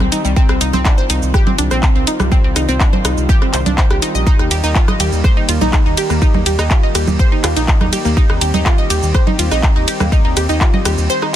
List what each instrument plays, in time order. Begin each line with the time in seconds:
Already playing: analog synth pad D#3 G3 C4 G4
0.00 analog synth bass C2, synth arpeggio sound C4, cross-stick, low conga
0.12 synth arpeggio sound D#4, closed hi-hat, shaker
0.25 analog synth bass C2, synth arpeggio sound G3, shaker
0.36 synth arpeggio sound C4, analog synth pad F4, kick, shaker
0.49 analog synth bass C2, synth arpeggio sound C4, cross-stick
0.61 analog synth bass C2, synth arpeggio sound D#4, closed hi-hat, shaker
0.73 analog synth bass C2, synth arpeggio sound C4, low conga, shaker
0.85 synth arpeggio sound D4, kick, cross-stick, clap, shaker
0.98 synth arpeggio sound C5
1.10 analog synth bass C2, synth arpeggio sound D#4, closed hi-hat, shaker
1.22 analog synth bass C2, shaker
1.34 synth arpeggio sound G4, kick, cross-stick, shaker
1.47 synth arpeggio sound C4, low conga
1.58 analog synth bass C2, synth arpeggio sound D4, closed hi-hat, shaker
1.71 analog synth bass A#1, synth arpeggio sound C4, cross-stick, shaker
1.83 synth arpeggio sound C4, kick, clap, shaker
1.96 analog synth bass C2, synth arpeggio sound C4
2.07 synth arpeggio sound D#4, closed hi-hat, shaker
2.20 analog synth bass C2, synth arpeggio sound G3, cross-stick, low conga, shaker
2.32 synth arpeggio sound C4, kick, shaker
2.44 analog synth bass C2, synth arpeggio sound C4
2.56 analog synth bass C2, synth arpeggio sound D#4, cross-stick, closed hi-hat, shaker
2.69 analog synth bass C2, synth arpeggio sound C4, shaker
2.80 synth arpeggio sound D4, kick, clap, shaker
2.93 synth arpeggio sound C5, low conga
3.05 analog synth bass C2, synth arpeggio sound D#4, cross-stick, closed hi-hat, shaker
3.17 analog synth bass C2, shaker
3.29 synth arpeggio sound G4, kick, shaker
3.42 synth arpeggio sound C4, cross-stick
3.54 analog synth bass C2, synth arpeggio sound C5, clap, closed hi-hat, shaker
3.66 analog synth bass C2, synth arpeggio sound D4, closed hi-hat, low conga, shaker
3.78 synth arpeggio sound C5, kick, clap, shaker
3.90 analog synth bass C2, synth arpeggio sound G4, cross-stick
4.02 synth arpeggio sound D#4, closed hi-hat, shaker
4.15 analog synth bass A#1, synth arpeggio sound D#5, shaker
4.27 analog synth pad A#3 G4, synth arpeggio sound D#4, kick, shaker
4.39 analog synth bass D#2, synth arpeggio sound D#4, cross-stick
4.51 analog synth bass D#2, synth arpeggio sound G4, closed hi-hat, ride, shaker
4.64 analog synth bass D#2, synth arpeggio sound D#4, shaker
4.75 synth arpeggio sound F4, kick, clap, shaker
4.88 synth arpeggio sound D#5, cross-stick, low conga
5.00 analog synth bass D#2, synth arpeggio sound G4, closed hi-hat, ride, shaker
5.12 analog synth bass D#2, shaker
5.24 synth arpeggio sound C5, kick, cross-stick, shaker
5.37 synth arpeggio sound D#4
5.49 analog synth bass D#2, synth arpeggio sound F4, closed hi-hat, ride, shaker
5.61 analog synth bass A#1, synth arpeggio sound D#4, low conga, shaker
5.73 synth arpeggio sound D#4, kick, cross-stick, clap, shaker
5.86 analog synth bass D#2, synth arpeggio sound D#4
5.97 synth arpeggio sound G4, closed hi-hat, ride, shaker
6.10 analog synth bass D#2, synth arpeggio sound A#3, cross-stick, shaker
6.22 synth arpeggio sound D#4, kick, shaker
6.34 analog synth bass D#2, synth arpeggio sound D#4, low conga
6.46 analog synth bass D#2, synth arpeggio sound G4, closed hi-hat, ride, shaker
6.59 analog synth bass D#2, synth arpeggio sound D#4, cross-stick, shaker
6.71 synth arpeggio sound F4, kick, clap, shaker
6.83 synth arpeggio sound D#5
6.95 analog synth bass D#2, synth arpeggio sound G4, cross-stick, closed hi-hat, ride, shaker
7.08 analog synth bass D#2, low conga, shaker
7.19 synth arpeggio sound C5, kick, shaker
7.32 synth arpeggio sound D#4
7.44 analog synth bass D#2, synth arpeggio sound F4, cross-stick, clap, closed hi-hat, ride, shaker
7.56 analog synth bass A#1, synth arpeggio sound D#4, closed hi-hat, shaker
7.68 synth arpeggio sound D#4, kick, clap, shaker
7.81 analog synth bass D#2, synth arpeggio sound D#4, cross-stick, low conga
7.93 synth arpeggio sound G4, closed hi-hat, ride, shaker
8.05 analog synth bass D#2, synth arpeggio sound A#3, shaker
8.17 analog synth pad C4, synth arpeggio sound D#4, kick, shaker
8.30 analog synth bass D#2, synth arpeggio sound D#4, cross-stick
8.41 analog synth bass D#2, synth arpeggio sound G4, closed hi-hat, ride, shaker
8.54 analog synth bass D#2, synth arpeggio sound D#4, low conga, shaker
8.66 synth arpeggio sound F4, kick, cross-stick, clap, shaker
8.78 synth arpeggio sound D#5
8.90 analog synth bass D#2, synth arpeggio sound G4, closed hi-hat, ride, shaker
9.03 analog synth bass D#2, shaker
9.14 synth arpeggio sound C5, kick, cross-stick, shaker
9.27 synth arpeggio sound D#4, low conga
9.39 analog synth bass D#2, synth arpeggio sound F4, closed hi-hat, ride, shaker
9.51 analog synth bass A#1, synth arpeggio sound D#4, cross-stick, shaker
9.63 synth arpeggio sound D#4, kick, clap, shaker
9.76 analog synth bass D#2, synth arpeggio sound D#4
9.88 synth arpeggio sound G4, closed hi-hat, ride, shaker
10.00 analog synth bass D#2, synth arpeggio sound A#3, cross-stick, low conga, shaker
10.12 synth arpeggio sound D#4, kick, shaker
10.25 analog synth bass D#2, synth arpeggio sound D#4
10.37 analog synth bass D#2, synth arpeggio sound G4, cross-stick, closed hi-hat, ride, shaker
10.49 analog synth bass D#2, synth arpeggio sound D#4, shaker
10.61 synth arpeggio sound F4, kick, clap, shaker
10.74 synth arpeggio sound D#5, low conga
10.85 analog synth bass D#2, synth arpeggio sound G4, cross-stick, closed hi-hat, ride, shaker
10.98 analog synth bass D#2, shaker
11.10 synth arpeggio sound C5, shaker
11.22 synth arpeggio sound D#4, cross-stick